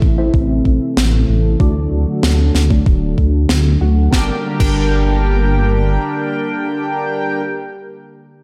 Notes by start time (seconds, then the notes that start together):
Already playing: C3 E3 A3 C4 E4 A4 E5
0.02 A1, kick
0.18 C4 E4 A4 E5
0.34 A1, kick
0.65 A1, kick
0.97 A1, snare
1.28 A1
1.60 D2 D3 F#3 A3 D4 F#4 D5, kick
1.92 D2
2.23 D2, snare
2.55 D2, snare
2.71 A3 D4 F#4 D5, kick
2.86 D1, kick
3.18 D2, kick
3.49 D2, snare
3.81 D2 A3 D4 F#4 F#5
4.13 G1 D3 G3 A#3 D4 G4 A#4 G5, kick, snare
4.60 G1 D4 G4 A#4 G5, kick, crash